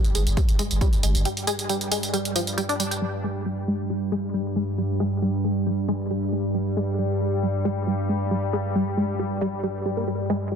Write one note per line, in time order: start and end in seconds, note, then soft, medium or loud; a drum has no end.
0.00 3.01 G2 medium
0.00 3.01 G3 medium
0.05 closed hi-hat medium
0.05 tambourine soft
0.15 0.26 G1 loud
0.15 0.22 G#3 medium
0.15 open hi-hat loud
0.15 tambourine medium
0.27 0.37 G1 medium
0.27 closed hi-hat medium
0.27 tambourine soft
0.37 0.40 G3 medium
0.37 kick loud
0.37 closed hi-hat medium
0.37 tambourine soft
0.49 0.59 G1 medium
0.49 closed hi-hat medium
0.49 tambourine soft
0.59 0.62 G#3 loud
0.59 open hi-hat loud
0.59 tambourine medium
0.71 0.81 G1 medium
0.71 closed hi-hat medium
0.71 tambourine soft
0.81 0.89 G3 medium
0.81 kick loud
0.81 closed hi-hat medium
0.81 tambourine soft
0.93 closed hi-hat medium
0.93 tambourine soft
1.03 1.14 G1 loud
1.03 1.11 G#3 medium
1.03 open hi-hat loud
1.03 tambourine medium
1.15 1.25 G1 medium
1.15 closed hi-hat medium
1.15 tambourine soft
1.25 1.28 G3 medium
1.25 closed hi-hat medium
1.25 tambourine soft
1.37 open hi-hat medium
1.37 tambourine soft
1.47 1.50 G#3 loud
1.47 open hi-hat loud
1.47 tambourine medium
1.59 closed hi-hat medium
1.59 tambourine soft
1.69 1.77 G3 medium
1.69 closed hi-hat medium
1.69 tambourine soft
1.81 closed hi-hat medium
1.81 tambourine soft
1.92 1.99 G#3 medium
1.92 open hi-hat loud
1.92 tambourine medium
2.03 closed hi-hat medium
2.03 tambourine soft
2.13 2.16 G3 medium
2.13 closed hi-hat medium
2.13 tambourine soft
2.25 closed hi-hat medium
2.25 tambourine soft
2.35 2.40 F3 medium
2.35 open hi-hat loud
2.35 tambourine medium
2.47 closed hi-hat medium
2.47 tambourine soft
2.58 2.61 G3 loud
2.58 closed hi-hat medium
2.58 tambourine soft
2.69 2.74 D4 loud
2.69 closed hi-hat medium
2.69 tambourine soft
2.80 2.83 G3 medium
2.80 open hi-hat loud
2.80 tambourine medium
2.91 2.94 G4 medium
2.91 closed hi-hat medium
2.91 tambourine soft
3.02 10.55 G2 medium
3.02 3.05 G3 medium
3.02 10.55 G3 medium
3.24 3.27 G#3 loud
3.46 3.53 G3 medium
3.68 3.75 G#3 medium
3.90 3.93 G3 medium
4.12 4.15 G#3 loud
4.34 4.42 G3 medium
4.56 4.64 G#3 medium
4.78 4.81 G3 medium
5.00 5.03 G#3 loud
5.22 5.30 G3 medium
5.44 5.52 G#3 medium
5.66 5.69 G3 medium
5.88 5.92 G#3 loud
6.11 6.18 G3 medium
6.33 6.40 G#3 medium
6.55 6.58 G3 medium
6.77 6.80 G#3 loud
6.99 7.06 G3 medium
7.21 7.28 G#3 medium
7.43 7.46 G3 medium
7.65 7.68 G#3 loud
7.87 7.94 G3 medium
8.09 8.17 G#3 medium
8.31 8.34 G3 medium
8.53 8.56 G#3 loud
8.75 8.83 G3 medium
8.97 9.05 G#3 medium
9.19 9.22 G3 medium
9.41 9.46 G3 loud
9.64 9.67 G3 medium
9.86 9.91 G3 medium
9.97 10.04 A#3 medium
10.08 10.11 G3 medium
10.30 10.33 G#3 loud
10.52 10.55 G3 medium